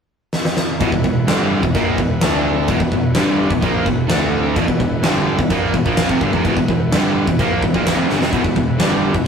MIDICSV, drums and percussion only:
0, 0, Header, 1, 2, 480
1, 0, Start_track
1, 0, Tempo, 469851
1, 824, Time_signature, 4, 2, 24, 8
1, 9473, End_track
2, 0, Start_track
2, 0, Title_t, "Drums"
2, 336, Note_on_c, 9, 38, 75
2, 438, Note_off_c, 9, 38, 0
2, 461, Note_on_c, 9, 38, 85
2, 564, Note_off_c, 9, 38, 0
2, 579, Note_on_c, 9, 38, 94
2, 681, Note_off_c, 9, 38, 0
2, 824, Note_on_c, 9, 36, 107
2, 828, Note_on_c, 9, 49, 63
2, 926, Note_off_c, 9, 36, 0
2, 930, Note_off_c, 9, 49, 0
2, 943, Note_on_c, 9, 36, 86
2, 1045, Note_off_c, 9, 36, 0
2, 1065, Note_on_c, 9, 36, 87
2, 1167, Note_off_c, 9, 36, 0
2, 1306, Note_on_c, 9, 49, 61
2, 1309, Note_on_c, 9, 38, 106
2, 1408, Note_off_c, 9, 49, 0
2, 1412, Note_off_c, 9, 38, 0
2, 1666, Note_on_c, 9, 36, 96
2, 1768, Note_off_c, 9, 36, 0
2, 1783, Note_on_c, 9, 49, 67
2, 1785, Note_on_c, 9, 36, 106
2, 1885, Note_off_c, 9, 49, 0
2, 1888, Note_off_c, 9, 36, 0
2, 2025, Note_on_c, 9, 36, 89
2, 2127, Note_off_c, 9, 36, 0
2, 2259, Note_on_c, 9, 49, 63
2, 2262, Note_on_c, 9, 38, 120
2, 2361, Note_off_c, 9, 49, 0
2, 2364, Note_off_c, 9, 38, 0
2, 2735, Note_on_c, 9, 49, 61
2, 2742, Note_on_c, 9, 36, 100
2, 2838, Note_off_c, 9, 49, 0
2, 2844, Note_off_c, 9, 36, 0
2, 2862, Note_on_c, 9, 36, 87
2, 2964, Note_off_c, 9, 36, 0
2, 2981, Note_on_c, 9, 36, 85
2, 3083, Note_off_c, 9, 36, 0
2, 3213, Note_on_c, 9, 49, 59
2, 3216, Note_on_c, 9, 38, 110
2, 3315, Note_off_c, 9, 49, 0
2, 3318, Note_off_c, 9, 38, 0
2, 3581, Note_on_c, 9, 36, 101
2, 3683, Note_off_c, 9, 36, 0
2, 3703, Note_on_c, 9, 36, 103
2, 3704, Note_on_c, 9, 49, 59
2, 3805, Note_off_c, 9, 36, 0
2, 3806, Note_off_c, 9, 49, 0
2, 3944, Note_on_c, 9, 36, 88
2, 4046, Note_off_c, 9, 36, 0
2, 4181, Note_on_c, 9, 49, 57
2, 4184, Note_on_c, 9, 38, 113
2, 4283, Note_off_c, 9, 49, 0
2, 4286, Note_off_c, 9, 38, 0
2, 4662, Note_on_c, 9, 36, 101
2, 4664, Note_on_c, 9, 49, 59
2, 4764, Note_off_c, 9, 36, 0
2, 4766, Note_off_c, 9, 49, 0
2, 4783, Note_on_c, 9, 36, 87
2, 4886, Note_off_c, 9, 36, 0
2, 4904, Note_on_c, 9, 36, 86
2, 5007, Note_off_c, 9, 36, 0
2, 5143, Note_on_c, 9, 49, 64
2, 5146, Note_on_c, 9, 38, 109
2, 5245, Note_off_c, 9, 49, 0
2, 5248, Note_off_c, 9, 38, 0
2, 5503, Note_on_c, 9, 36, 95
2, 5605, Note_off_c, 9, 36, 0
2, 5619, Note_on_c, 9, 49, 66
2, 5623, Note_on_c, 9, 36, 105
2, 5721, Note_off_c, 9, 49, 0
2, 5725, Note_off_c, 9, 36, 0
2, 5863, Note_on_c, 9, 36, 96
2, 5965, Note_off_c, 9, 36, 0
2, 5984, Note_on_c, 9, 36, 89
2, 6086, Note_off_c, 9, 36, 0
2, 6098, Note_on_c, 9, 49, 70
2, 6102, Note_on_c, 9, 38, 120
2, 6201, Note_off_c, 9, 49, 0
2, 6204, Note_off_c, 9, 38, 0
2, 6225, Note_on_c, 9, 36, 106
2, 6327, Note_off_c, 9, 36, 0
2, 6346, Note_on_c, 9, 36, 92
2, 6448, Note_off_c, 9, 36, 0
2, 6468, Note_on_c, 9, 36, 82
2, 6570, Note_off_c, 9, 36, 0
2, 6588, Note_on_c, 9, 36, 96
2, 6589, Note_on_c, 9, 49, 58
2, 6690, Note_off_c, 9, 36, 0
2, 6691, Note_off_c, 9, 49, 0
2, 6708, Note_on_c, 9, 36, 90
2, 6810, Note_off_c, 9, 36, 0
2, 6829, Note_on_c, 9, 36, 84
2, 6931, Note_off_c, 9, 36, 0
2, 7072, Note_on_c, 9, 49, 60
2, 7075, Note_on_c, 9, 38, 107
2, 7174, Note_off_c, 9, 49, 0
2, 7177, Note_off_c, 9, 38, 0
2, 7432, Note_on_c, 9, 36, 95
2, 7534, Note_off_c, 9, 36, 0
2, 7552, Note_on_c, 9, 36, 103
2, 7557, Note_on_c, 9, 49, 62
2, 7654, Note_off_c, 9, 36, 0
2, 7659, Note_off_c, 9, 49, 0
2, 7790, Note_on_c, 9, 36, 91
2, 7892, Note_off_c, 9, 36, 0
2, 7911, Note_on_c, 9, 36, 86
2, 8013, Note_off_c, 9, 36, 0
2, 8034, Note_on_c, 9, 49, 60
2, 8037, Note_on_c, 9, 38, 114
2, 8137, Note_off_c, 9, 49, 0
2, 8140, Note_off_c, 9, 38, 0
2, 8275, Note_on_c, 9, 38, 64
2, 8377, Note_off_c, 9, 38, 0
2, 8399, Note_on_c, 9, 38, 89
2, 8502, Note_off_c, 9, 38, 0
2, 8508, Note_on_c, 9, 36, 109
2, 8517, Note_on_c, 9, 49, 56
2, 8610, Note_off_c, 9, 36, 0
2, 8619, Note_off_c, 9, 49, 0
2, 8627, Note_on_c, 9, 36, 87
2, 8729, Note_off_c, 9, 36, 0
2, 8747, Note_on_c, 9, 36, 83
2, 8849, Note_off_c, 9, 36, 0
2, 8985, Note_on_c, 9, 49, 59
2, 8988, Note_on_c, 9, 38, 112
2, 9088, Note_off_c, 9, 49, 0
2, 9091, Note_off_c, 9, 38, 0
2, 9342, Note_on_c, 9, 36, 95
2, 9444, Note_off_c, 9, 36, 0
2, 9473, End_track
0, 0, End_of_file